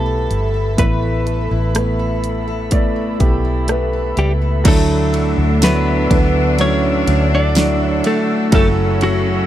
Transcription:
Already playing: fingered electric bass B1, grand piano A3 B3 E4 G4 B4 D5, steel-string acoustic guitar A3 B3 E4, clean electric guitar A4, analog synth pad A4 E5 B5
0.06 steel-string acoustic guitar A4
0.30 fingered electric bass G1, steel-string acoustic guitar E4, closed hi-hat
0.54 steel-string acoustic guitar A4
0.77 fingered electric bass A1, grand piano A2 A3 B3 E4 B4, steel-string acoustic guitar A3, clean electric guitar B4, kick, closed hi-hat
1.02 steel-string acoustic guitar E4
1.26 steel-string acoustic guitar A4, closed hi-hat
1.51 fingered electric bass A1, steel-string acoustic guitar E4
1.74 grand piano A3 B3 E4 B4, steel-string acoustic guitar B3, cross-stick, closed hi-hat
1.99 steel-string acoustic guitar A4
2.24 steel-string acoustic guitar E4, closed hi-hat
2.48 steel-string acoustic guitar A4
2.71 grand piano A3 B3 E4 D5, steel-string acoustic guitar A3, kick, closed hi-hat
2.96 steel-string acoustic guitar E4
3.19 fingered electric bass B1, grand piano A3 B3 E4 G4, steel-string acoustic guitar A4, kick, closed hi-hat
3.45 steel-string acoustic guitar E4
3.68 grand piano A3 B3 E4 B4, steel-string acoustic guitar B3, cross-stick, closed hi-hat
3.93 steel-string acoustic guitar A4
4.17 fingered electric bass C#2, clean electric guitar G3 G4, steel-string acoustic guitar E4, closed hi-hat
4.42 steel-string acoustic guitar A4
4.64 fingered electric bass D2, grand piano D3 F#3 A3 D4 E4 A4, cello section D3 D4, clean electric guitar A3, analog synth pad E5 F#5 E6, kick, crash, ride
4.68 clean electric guitar A4
5.14 ride
5.38 fingered electric bass D2
5.61 grand piano F#3 A3 D4 E4 F#4, clean electric guitar B3 B4, snare, ride
6.09 fingered electric bass D2, grand piano F#3 A3 D4 E4 B4, kick, ride
6.59 grand piano D3 F#3 A3 E4 A4, clean electric guitar C#4 C#5, ride
7.07 fingered electric bass D2, ride
7.35 clean electric guitar D4 D5
7.55 grand piano F#3 A3 D4 E4 F#4, snare, ride
7.86 clean electric guitar C#5
8.04 clean electric guitar A3 A4, ride
8.52 fingered electric bass F#1, cello section C#3 C#4, grand piano F#3 A3 C#4 E4 A4, clean electric guitar A3 A4, analog synth pad A4, kick, ride
9.01 clean electric guitar F#3 F#4, ride

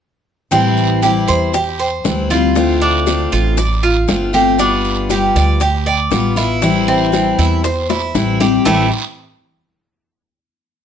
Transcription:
0.51 upright bass A1, steel-string acoustic guitar E3 G3 C4 E4, cuban tres C4, high bongo, long guiro, maracas
0.77 maracas
1.02 steel-string acoustic guitar E3 G3 C4 E4, cuban tres G4, high bongo, short guiro, maracas
1.28 upright bass E2, cuban tres C5, short guiro, maracas
1.53 cuban tres G4, muted steel-string acoustic guitar stroke, high bongo, long guiro, maracas
1.79 cuban tres C5, maracas
2.04 upright bass D2, steel-string acoustic guitar E3 G3 C4 E4, high bongo, low bongo, short guiro, maracas
2.30 steel-string acoustic guitar G3 C4 E4, cuban tres F4, short guiro, maracas
2.55 steel-string acoustic guitar D3 A3 C4 F4, high bongo, long guiro, maracas
2.81 cuban tres D4, high bongo, maracas
3.06 steel-string acoustic guitar D3 A3 C4 F4, high bongo, short guiro, maracas
3.32 upright bass A1, cuban tres F4, high bongo, short guiro, maracas
3.57 cuban tres D5, muted steel-string acoustic guitar stroke, high bongo, long guiro, maracas
3.83 cuban tres F4, maracas
4.08 upright bass G1, steel-string acoustic guitar D3 A3 C4 F4, high bongo, low bongo, short guiro, maracas
4.33 steel-string acoustic guitar A3 C4 F4, cuban tres G4, high bongo, short guiro, maracas
4.59 steel-string acoustic guitar G3 B3 F4, cuban tres D4, high bongo, long guiro, maracas
4.85 maracas
5.09 steel-string acoustic guitar G3 B3 F4, cuban tres G4, high bongo, short guiro, maracas
5.36 upright bass D2, cuban tres D5, short guiro, maracas
5.60 cuban tres G4, muted steel-string acoustic guitar stroke, high bongo, long guiro, maracas
5.86 cuban tres D5, maracas
6.11 upright bass A1, steel-string acoustic guitar G3 B3 F4, high bongo, low bongo, short guiro, maracas
6.36 steel-string acoustic guitar B3 F4, cuban tres E4, short guiro, maracas
6.62 steel-string acoustic guitar E3 G3 C4 E4, high bongo, long guiro, maracas
6.88 cuban tres C4, high bongo, maracas
7.12 steel-string acoustic guitar E3 G3 C4 E4, high bongo, short guiro, maracas
7.38 upright bass E2, cuban tres E4, high bongo, short guiro, maracas
7.64 cuban tres C5, muted steel-string acoustic guitar stroke, high bongo, long guiro, maracas
7.90 cuban tres E4, high bongo, maracas
8.15 upright bass A1, steel-string acoustic guitar E3 G3 C4 E4, low bongo, short guiro, maracas
8.40 steel-string acoustic guitar G3 C4 E4, cuban tres G4, low bongo, short guiro, maracas
8.65 upright bass A1, steel-string acoustic guitar A2 E3 G3 C4 E4, cuban tres A3 E4 G4, low bongo, long guiro, maracas

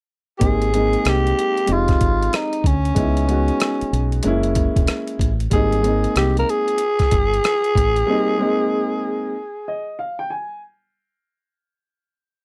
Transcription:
0.38 fingered electric bass G#1, upright piano A#3 C4 D#4, tenor saxophone G4, kick, closed hi-hat
0.43 upright piano G4, tenor saxophone G#4
0.62 closed hi-hat
0.72 upright piano G#3 A#3 C4 D#4, closed hi-hat
0.93 closed hi-hat
1.05 fingered electric bass C2, tenor saxophone G4, cross-stick, closed hi-hat
1.27 closed hi-hat
1.39 closed hi-hat
1.57 closed hi-hat
1.66 fingered electric bass F1, upright piano G#3 C4 D#4, closed hi-hat
1.70 tenor saxophone F4, upright piano G4
1.88 kick, cross-stick, closed hi-hat
2.01 fingered electric bass G#1, kick, closed hi-hat
2.23 closed hi-hat
2.33 tenor saxophone D#4, cross-stick, closed hi-hat
2.53 closed hi-hat
2.64 fingered electric bass D2, tenor saxophone C#4, kick, closed hi-hat
2.85 closed hi-hat
2.95 fingered electric bass C#2, upright piano G#3 B3 D#4 E4, kick, closed hi-hat
3.17 closed hi-hat
3.27 upright piano G#3 B3 D#4 F#4, closed hi-hat
3.48 closed hi-hat
3.60 cross-stick, closed hi-hat
3.81 muted fingered electric bass stroke, closed hi-hat
3.93 fingered electric bass B1, closed hi-hat
4.12 closed hi-hat
4.23 fingered electric bass F#1, upright piano G#3 A#3 C#4, closed hi-hat
4.27 upright piano E4
4.43 closed hi-hat
4.55 kick, closed hi-hat
4.76 fingered electric bass E1, kick, closed hi-hat
4.87 cross-stick, closed hi-hat
5.08 closed hi-hat
5.19 fingered electric bass A1, kick, closed hi-hat
5.40 closed hi-hat
5.50 fingered electric bass G#1, upright piano G3 A#3 C4, tenor saxophone G#4, kick, closed hi-hat
5.54 upright piano D#4
5.72 closed hi-hat
5.82 upright piano G#3 A#3 C4, closed hi-hat
5.86 upright piano D#4
6.04 closed hi-hat
6.16 fingered electric bass C2, tenor saxophone G4, cross-stick, closed hi-hat
6.37 tenor saxophone A#4, closed hi-hat
6.49 tenor saxophone G#4, closed hi-hat
6.68 closed hi-hat
6.78 closed hi-hat
6.99 kick, cross-stick, closed hi-hat
7.11 fingered electric bass G1, kick, closed hi-hat
7.34 closed hi-hat
7.44 cross-stick, closed hi-hat
7.64 closed hi-hat
7.75 fingered electric bass A1, kick, closed hi-hat
7.96 closed hi-hat
8.06 upright piano G3 A#3 C4
8.10 upright piano D#4
8.38 upright piano G#3 A#3 C4
8.42 upright piano D#4
9.68 upright piano D#5
9.99 upright piano F5
10.19 upright piano G5
10.30 upright piano G#5

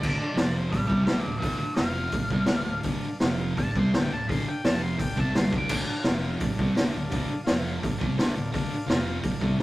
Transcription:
Already playing: lead electric guitar D5
0.01 fingered electric bass D1, distorted electric guitar D2 A2 D3, transistor combo organ D4 F4 A4, kick, crash
0.19 muted distorted electric guitar stroke, muted fingered electric bass stroke
0.34 fingered electric bass F1, distorted electric guitar F2 C3 F3, transistor combo organ C4 F4, snare, open hi-hat
0.39 transistor combo organ C5
0.69 fingered electric bass D1, distorted electric guitar D2 A2, transistor combo organ F4 A4 D5, lead electric guitar D5 G5, kick, open hi-hat
0.87 fingered electric bass C2, distorted electric guitar C3 G3 C4, lead electric guitar D5 G5, kick
1.05 fingered electric bass D1, distorted electric guitar D2 A2 D3, lead electric guitar D5 G5, snare, open hi-hat
1.09 transistor combo organ F4 A4 E5
1.20 lead electric guitar D5 F5
1.24 fingered electric bass D1, distorted electric guitar D2 A2
1.38 distorted electric guitar D2 A2, lead electric guitar D5 F5
1.42 fingered electric bass D1, distorted electric guitar D3, transistor combo organ F4 A4 D5, kick, open hi-hat
1.59 lead electric guitar D5 F5, muted distorted electric guitar stroke
1.63 muted fingered electric bass stroke
1.75 fingered electric bass F1, distorted electric guitar F2 C3 F3, transistor combo organ F4 C5 F5, lead electric guitar F5, snare, open hi-hat
2.09 fingered electric bass D1, distorted electric guitar D2, transistor combo organ A4 D5 F5, kick, open hi-hat
2.14 distorted electric guitar A2
2.30 fingered electric bass C2, distorted electric guitar C3 G3 C4, kick
2.46 fingered electric bass D1, distorted electric guitar D2, transistor combo organ A4 D5 F5, snare, open hi-hat
2.51 distorted electric guitar A2 D3
2.66 fingered electric bass D1, distorted electric guitar D2 A2
2.82 fingered electric bass D1, distorted electric guitar D2 A2 D3, transistor combo organ A4 D5 F5, kick, open hi-hat
3.04 muted distorted electric guitar stroke, muted fingered electric bass stroke
3.20 fingered electric bass F1, distorted electric guitar F2 C3 F3, transistor combo organ F4 C5 F5, snare, open hi-hat
3.56 fingered electric bass D1, distorted electric guitar D2 A2, transistor combo organ A4 D5 F5, lead electric guitar A5, kick, open hi-hat
3.75 fingered electric bass C2, distorted electric guitar C3 G3 C4, kick
3.79 lead electric guitar C6
3.91 fingered electric bass D1, distorted electric guitar D2 A2, transistor combo organ A4 D5 F5, lead electric guitar G5, snare, open hi-hat
3.96 distorted electric guitar D3
4.11 fingered electric bass D1, distorted electric guitar D2 A2, lead electric guitar A5
4.28 fingered electric bass D1, distorted electric guitar D2 A2 D3, transistor combo organ A4 D5 F5, lead electric guitar C6, kick, open hi-hat
4.46 lead electric guitar G5, muted distorted electric guitar stroke, muted fingered electric bass stroke
4.63 distorted electric guitar F2 C3 F3, transistor combo organ F4 C5 F5, lead electric guitar A5, snare, open hi-hat
4.67 fingered electric bass F1
4.82 lead electric guitar C6
4.98 fingered electric bass D1, distorted electric guitar D2 A2, transistor combo organ A4 D5 F5, lead electric guitar G5, kick, open hi-hat
5.16 fingered electric bass C2, distorted electric guitar C3 G3 C4, lead electric guitar A5, kick
5.33 fingered electric bass G1, distorted electric guitar G2 D3 G3, transistor combo organ A4 D5 F5, lead electric guitar C6, snare, open hi-hat
5.50 fingered electric bass D1, distorted electric guitar D2 A2 D3, kick
5.58 lead electric guitar D6
5.67 fingered electric bass D1, distorted electric guitar D2 A2, transistor combo organ A4 D5 F5, kick, crash
5.71 distorted electric guitar D3
5.87 muted distorted electric guitar stroke, muted fingered electric bass stroke
5.99 transistor combo organ F4 C5 F5
6.04 fingered electric bass F1, distorted electric guitar F2 C3 F3, snare, open hi-hat
6.39 fingered electric bass D1, distorted electric guitar D2 A2, transistor combo organ A4 D5 F5, kick, open hi-hat
6.53 transistor combo organ A4 D5 F5
6.58 fingered electric bass C2, distorted electric guitar C3 G3 C4, kick
6.73 fingered electric bass D1, distorted electric guitar D2 A2, transistor combo organ A4 D5 F5, snare, open hi-hat
6.78 distorted electric guitar D3
6.94 fingered electric bass D1, distorted electric guitar D2 A2
7.05 transistor combo organ A4 D5 F5
7.10 fingered electric bass D1, distorted electric guitar D2 A2 D3, kick, open hi-hat
7.30 muted distorted electric guitar stroke, muted fingered electric bass stroke
7.44 distorted electric guitar F2 C3, transistor combo organ F4 C5 F5, snare, open hi-hat
7.48 fingered electric bass F1, distorted electric guitar F3
7.79 distorted electric guitar D2 A2, transistor combo organ A4 D5 F5
7.83 fingered electric bass D1, kick, open hi-hat
7.98 distorted electric guitar C3 G3 C4, transistor combo organ A4 D5 F5, kick
8.02 fingered electric bass C2
8.18 fingered electric bass D1, distorted electric guitar D2 A2 D3, transistor combo organ A4 D5 F5, snare, open hi-hat
8.35 fingered electric bass D1, distorted electric guitar D2 A2
8.53 fingered electric bass D1, distorted electric guitar D2 A2 D3, transistor combo organ A4 D5 F5, kick, open hi-hat
8.70 muted distorted electric guitar stroke, muted fingered electric bass stroke
8.85 fingered electric bass F1, distorted electric guitar F2 C3 F3, transistor combo organ F4 C5 F5
8.89 snare, open hi-hat
9.22 fingered electric bass D1, distorted electric guitar D2 A2, transistor combo organ A4 D5 F5, kick, open hi-hat
9.41 fingered electric bass C2, distorted electric guitar C3 G3 C4, transistor combo organ A4 D5 F5, kick
9.58 fingered electric bass D1, distorted electric guitar D2 A2 D3

